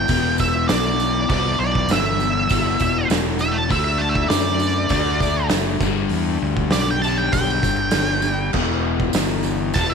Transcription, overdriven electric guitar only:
0.00 0.12 E3 medium
0.09 1.27 E2 medium
0.09 1.29 B2 medium
0.09 1.30 E3 medium
1.29 2.47 E2 medium
1.29 2.50 B2 medium
1.33 2.50 E3 loud
2.48 3.69 E2 medium
2.48 3.68 B2 medium
2.48 3.69 E3 medium
3.68 4.89 D3 medium
3.68 4.90 A3 loud
3.68 4.93 D4 medium
4.90 5.80 D3 medium
4.90 5.81 A3 medium
4.90 5.82 D4 medium
5.81 7.01 G2 medium
5.81 7.02 D3 loud
5.85 7.03 G3 loud
7.04 8.25 G2 medium
7.04 8.24 D3 medium
7.04 8.58 G3 loud
8.54 9.75 E2 medium
8.54 9.75 B2 medium
8.59 9.78 E3 medium
9.75 9.94 E2 medium
9.75 9.94 B2 medium
9.75 9.94 E3 medium

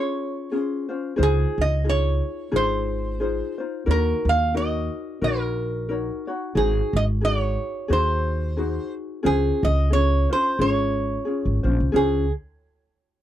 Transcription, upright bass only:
1.19 1.44 C#2 medium
1.58 2.20 C#2 medium
2.53 3.40 G#1 medium
3.87 4.12 D#2 medium
4.25 4.87 D#2 loud
5.22 6.09 A#1 medium
6.55 6.81 G#1 medium
6.93 7.56 G#1 loud
7.90 8.77 D#2 medium
9.25 9.50 C#2 medium
9.63 10.25 C#2 loud
10.59 11.15 G#1 medium
11.45 11.63 G#1 medium
11.64 11.77 A#1 medium
11.80 11.93 C2 medium
11.94 12.30 C#2 medium

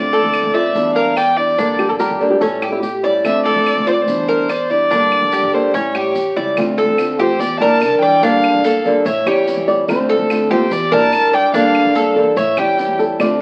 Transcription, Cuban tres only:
0.00 0.12 D5 medium
0.13 0.53 A4 medium
0.54 0.95 D5 medium
0.96 1.16 A#4 medium
1.17 1.57 D5 medium
1.58 1.99 D4 medium
2.00 2.40 G4 medium
2.41 2.62 C#4 medium
2.62 3.03 G4 medium
3.04 3.44 D5 medium
3.45 3.86 A4 medium
3.87 4.27 D5 medium
4.29 4.49 A#4 medium
4.49 4.90 D5 medium
4.91 5.31 D4 medium
5.33 5.73 G4 medium
5.74 5.94 C#4 medium
5.95 6.35 G4 medium
6.36 6.57 D5 medium
6.78 7.18 A4 medium
7.19 7.60 G4 medium
7.61 8.01 A#4 medium
8.02 8.22 D5 medium
8.23 8.63 D4 medium
8.65 9.05 A4 medium
9.06 9.26 C#5 medium
9.27 9.67 G4 medium
10.09 10.49 A4 medium
10.51 10.91 G4 medium
10.92 11.32 A#4 medium
11.33 11.53 D5 medium
11.54 11.94 D4 medium
11.95 12.36 A4 medium
12.37 12.57 C#5 medium
12.58 12.98 G4 medium

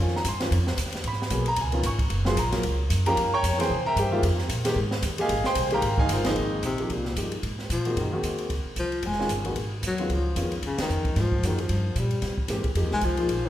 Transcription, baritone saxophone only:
6.65 6.94 C3 medium
6.92 7.18 A#2 medium
7.72 7.99 F3 medium
7.98 8.24 D#3 medium
8.79 9.07 F3 medium
9.06 9.31 G#3 medium
9.86 10.14 F#3 medium
10.13 10.38 F3 medium
10.66 10.79 C#3 medium
10.82 11.22 D#3 medium
11.20 11.48 F3 medium
11.47 11.62 D#3 medium
11.61 12.00 F3 medium
11.99 12.39 G3 medium
12.93 13.07 G#3 medium
13.05 13.48 F3 medium

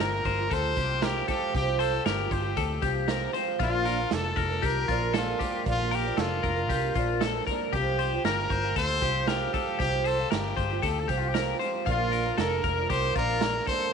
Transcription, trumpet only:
0.02 0.54 A#4 medium
0.53 1.05 C5 medium
1.03 1.28 G4 medium
1.29 1.53 G4 medium
1.56 1.81 G4 medium
1.80 2.07 A4 medium
2.06 3.09 G4 medium
3.62 4.15 F4 medium
4.14 4.67 A4 medium
4.66 5.16 A#4 medium
5.17 5.64 F4 medium
5.70 5.96 F4 medium
5.95 6.22 G4 medium
6.20 7.22 F4 medium
7.74 8.27 G4 medium
8.25 8.77 A#4 medium
8.78 9.30 C5 loud
9.29 9.79 G4 medium
9.80 10.08 G4 medium
10.06 10.32 A4 medium
10.33 11.01 G4 medium
11.00 11.11 A4 medium
11.09 11.20 G4 medium
11.18 11.30 F4 medium
11.28 11.36 G4 medium
11.90 12.41 F4 medium
12.39 12.92 A#4 medium
12.90 13.16 C5 medium
13.17 13.64 A#4 medium
13.68 13.91 C5 loud

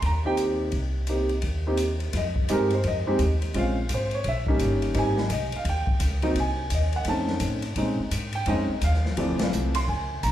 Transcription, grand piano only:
0.06 0.26 A#5 medium
0.25 0.71 A#3 medium
0.25 0.71 C4 medium
0.25 0.71 D#4 medium
0.25 0.71 G4 medium
0.25 0.34 G5 medium
1.09 1.29 A#3 medium
1.09 1.29 C4 soft
1.09 1.29 D#4 soft
1.09 1.29 G4 medium
1.67 1.78 A#3 medium
1.67 1.78 C4 medium
1.67 1.78 D#4 medium
1.67 1.78 G4 medium
2.17 2.48 D#5 medium
2.50 2.69 G#3 medium
2.50 2.69 C4 medium
2.50 2.70 D#4 medium
2.50 2.70 G4 medium
2.50 2.72 A#4 medium
2.74 2.85 C5 medium
2.88 3.19 D#5 medium
3.07 3.19 G#3 medium
3.07 3.19 C4 medium
3.07 3.19 D#4 medium
3.07 3.19 G4 medium
3.54 3.75 G#3 medium
3.54 3.75 C4 medium
3.54 3.75 C#4 medium
3.54 3.75 F4 medium
3.58 3.89 F5 medium
3.94 4.14 C5 medium
4.14 4.26 C#5 medium
4.28 4.60 E5 medium
4.48 4.93 G3 medium
4.48 4.93 A#3 medium
4.48 4.93 C#4 medium
4.48 4.93 D#4 medium
4.94 5.15 G3 medium
4.94 5.15 A#3 medium
4.94 5.15 C4 medium
4.94 5.15 D#4 medium
4.94 5.30 G#5 medium
5.32 5.53 D#5 medium
5.56 5.67 F5 medium
5.69 6.00 G5 medium
6.23 6.35 F#3 medium
6.23 6.35 A#3 medium
6.23 6.35 C4 medium
6.23 6.35 D#4 medium
6.40 6.71 G#5 medium
6.75 6.95 D#5 medium
6.96 7.07 F#5 medium
7.07 7.60 A3 medium
7.07 7.60 C4 soft
7.07 7.60 C#4 medium
7.07 7.60 D#4 medium
7.07 7.41 A5 medium
7.77 7.97 G#3 medium
7.77 7.97 C4 soft
7.77 7.97 C#4 soft
7.77 7.97 D#4 medium
8.35 8.47 G5 medium
8.47 8.67 G#3 medium
8.47 8.67 C4 medium
8.47 8.67 C#4 medium
8.47 8.68 D#4 medium
8.47 8.81 D#5 medium
8.84 9.16 F5 medium
9.17 9.71 E3 medium
9.17 9.71 F3 medium
9.17 9.71 A3 medium
9.17 9.70 C4 medium
9.17 9.41 D5 medium
9.42 9.86 F5 medium
9.75 9.88 C6 medium
9.89 10.21 G#5 medium
10.23 10.32 A#5 medium

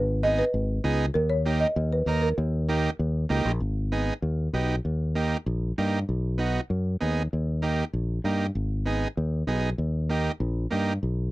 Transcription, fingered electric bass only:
0.00 0.41 G#1 loud
0.54 0.78 G#1 medium
0.84 1.09 C#2 medium
1.15 1.64 D#2 loud
1.76 2.01 D#2 loud
2.06 2.31 D#2 medium
2.38 2.87 D#2 loud
2.99 3.24 D#2 medium
3.30 3.44 C#2 medium
3.45 3.59 A#1 medium
3.60 4.10 G#1 medium
4.22 4.47 D#2 medium
4.53 4.78 B1 medium
4.85 5.34 D#2 medium
5.46 5.71 A#1 medium
5.78 6.03 G2 medium
6.09 6.58 B1 medium
6.70 6.95 F#2 medium
7.02 7.26 D#2 medium
7.33 7.82 D#2 medium
7.93 8.18 A#1 medium
8.24 8.49 G2 medium
8.55 9.05 G#1 medium
9.17 9.42 D#2 medium
9.47 9.72 B1 medium
9.78 10.28 D#2 medium
10.40 10.65 A#1 medium
10.72 10.97 G2 medium
11.03 11.31 B1 medium

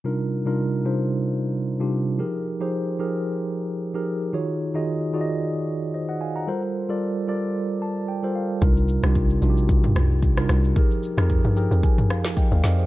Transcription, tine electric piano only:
0.04 0.37 C3 medium
0.04 0.37 G3 medium
0.04 0.37 D4 medium
0.04 0.38 D#4 medium
0.04 0.38 F4 medium
0.04 0.38 A#4 medium
0.45 0.77 C3 medium
0.45 0.78 G3 medium
0.45 0.78 D4 medium
0.45 0.78 D#4 medium
0.45 0.78 F4 medium
0.45 0.78 A#4 medium
0.84 1.60 C3 medium
0.84 1.60 G3 medium
0.84 1.61 D4 medium
0.84 1.61 D#4 medium
0.84 1.61 F4 medium
0.84 1.61 C5 medium
1.80 2.11 C3 medium
1.80 2.12 G3 medium
1.80 2.12 D4 medium
1.80 2.12 D#4 medium
1.80 2.12 F4 medium
1.80 2.12 G4 medium
2.18 2.51 F3 medium
2.18 2.52 D#4 medium
2.18 2.52 G4 medium
2.18 2.52 G#4 medium
2.18 2.52 A#4 medium
2.60 2.92 F3 medium
2.60 2.92 D#4 medium
2.60 2.92 G4 medium
2.60 2.93 G#4 medium
2.60 2.93 C5 loud
2.99 3.75 F3 medium
2.99 3.75 D#4 medium
2.99 3.75 G4 medium
2.99 3.75 G#4 medium
2.99 3.75 A#4 medium
3.94 4.26 F3 medium
3.94 4.26 D#4 medium
3.94 4.26 G4 medium
3.94 4.26 G#4 medium
3.94 4.27 A#4 medium
4.33 4.66 D#3 medium
4.33 4.66 D#4 medium
4.33 4.66 F4 medium
4.33 4.66 F#4 medium
4.33 4.66 G#4 medium
4.33 4.67 C#5 medium
4.74 5.06 D#3 medium
4.74 5.06 D#4 medium
4.74 5.06 F4 medium
4.74 5.07 F#4 medium
4.74 5.07 G#4 medium
4.74 5.07 D#5 loud
5.13 5.89 D#3 medium
5.13 5.89 D#4 medium
5.13 5.89 F4 medium
5.13 5.89 F#4 medium
5.13 5.89 G#4 medium
5.13 5.21 D5 medium
5.21 5.93 D#5 medium
5.94 6.08 C5 medium
5.94 6.08 D#5 medium
6.09 6.21 D#5 medium
6.09 6.20 F#5 medium
6.21 6.35 F5 medium
6.21 6.35 G#5 medium
6.36 6.61 F#5 medium
6.36 6.61 A#5 medium
6.47 6.80 G3 medium
6.47 6.80 F4 medium
6.47 6.80 A4 medium
6.47 6.81 A#4 medium
6.47 6.81 C5 medium
6.89 7.21 G3 medium
6.89 7.21 F4 medium
6.89 7.21 A4 medium
6.89 7.21 A#4 medium
6.89 7.21 D5 loud
7.27 8.03 G3 medium
7.27 8.03 F4 medium
7.27 8.04 A4 medium
7.27 8.04 A#4 medium
7.27 8.04 D5 medium
7.82 8.07 A5 medium
8.08 8.33 G5 medium
8.22 8.54 G3 medium
8.22 8.55 F4 medium
8.22 8.55 A4 medium
8.22 8.55 A#4 medium
8.22 8.55 C5 medium
8.35 8.60 F5 medium
8.61 8.94 C3 medium
8.61 8.95 G3 medium
8.61 8.95 D4 medium
8.61 8.95 D#4 medium
8.61 8.95 F4 medium
8.61 8.95 A#4 medium
9.03 9.35 C3 medium
9.03 9.35 G3 medium
9.03 9.35 D4 medium
9.03 9.35 D#4 medium
9.03 9.35 F4 medium
9.03 9.36 G4 loud
9.42 10.17 C3 medium
9.42 10.18 G3 medium
9.42 10.18 D4 medium
9.42 10.18 D#4 medium
9.42 10.18 F4 medium
9.42 9.50 F#4 medium
9.50 10.21 G4 medium
10.37 10.69 C3 medium
10.37 10.69 G3 medium
10.37 10.69 D4 medium
10.37 10.69 D#4 medium
10.37 10.69 F4 medium
10.37 10.69 A#4 medium
10.76 11.09 F3 medium
10.76 11.09 D#4 medium
10.76 11.09 G4 medium
10.76 11.09 G#4 medium
10.76 11.09 A#4 medium
11.17 11.49 F3 medium
11.17 11.49 D#4 medium
11.17 11.49 G4 medium
11.17 11.50 G#4 medium
11.17 11.50 A#4 loud
11.56 12.32 F3 medium
11.56 12.32 D#4 medium
11.56 12.32 G4 medium
11.56 12.32 G#4 medium
11.56 12.33 A#4 medium
11.56 11.82 G5 medium
11.84 12.08 G#5 medium
12.10 12.35 F5 medium
12.37 12.51 D#5 medium
12.37 12.62 G5 medium
12.52 12.63 D5 medium
12.52 12.63 F5 medium
12.64 12.78 C5 medium
12.64 12.78 D#5 medium
12.64 12.86 F5 medium
12.79 12.86 G#4 medium
12.79 12.86 C5 medium

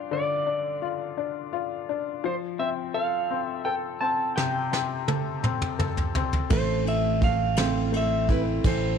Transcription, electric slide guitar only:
0.13 0.88 D5 medium
2.26 2.35 C5 medium
2.59 2.69 E5 medium
2.94 3.45 F5 medium
3.45 3.65 E5 medium
3.65 3.75 G5 loud
4.01 4.35 A5 loud
4.36 5.12 G5 medium
6.53 6.85 C5 medium
6.88 7.21 E5 medium
7.24 7.90 F5 loud
7.97 8.32 E5 loud
8.32 8.41 B4 medium
8.67 8.98 C5 medium

